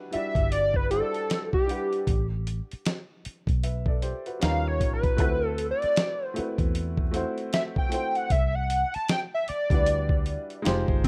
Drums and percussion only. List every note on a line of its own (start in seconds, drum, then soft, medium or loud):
0.13 closed hi-hat medium
0.35 kick loud
0.35 closed hi-hat soft
0.52 closed hi-hat medium
0.74 kick medium
0.91 closed hi-hat medium
1.14 closed hi-hat soft
1.30 snare loud
1.30 closed hi-hat medium
1.53 kick medium
1.69 closed hi-hat medium
1.93 closed hi-hat soft
2.07 kick medium
2.07 closed hi-hat medium
2.47 closed hi-hat medium
2.71 closed hi-hat soft
2.86 snare loud
2.86 closed hi-hat medium
3.25 closed hi-hat medium
3.47 kick medium
3.47 closed hi-hat soft
3.63 closed hi-hat medium
3.86 kick medium
4.02 closed hi-hat medium
4.26 closed hi-hat soft
4.42 snare loud
4.42 closed hi-hat medium
4.81 kick medium
4.81 closed hi-hat medium
5.03 kick medium
5.03 closed hi-hat soft
5.18 kick medium
5.18 closed hi-hat medium
5.58 closed hi-hat medium
5.82 closed hi-hat soft
5.96 snare loud
5.96 closed hi-hat medium
6.36 closed hi-hat medium
6.58 kick loud
6.58 closed hi-hat soft
6.75 closed hi-hat medium
6.97 kick medium
7.14 closed hi-hat medium
7.38 closed hi-hat soft
7.53 snare loud
7.53 closed hi-hat medium
7.76 kick medium
7.92 closed hi-hat medium
8.15 closed hi-hat soft
8.30 kick medium
8.30 closed hi-hat medium
8.70 closed hi-hat medium
8.94 closed hi-hat soft
9.08 snare loud
9.08 closed hi-hat medium
9.48 closed hi-hat medium
9.70 kick loud
9.70 closed hi-hat soft
9.86 closed hi-hat medium
10.09 kick medium
10.26 closed hi-hat medium
10.50 closed hi-hat soft
10.65 snare loud
10.65 closed hi-hat medium
10.88 kick medium
11.04 kick medium
11.04 closed hi-hat medium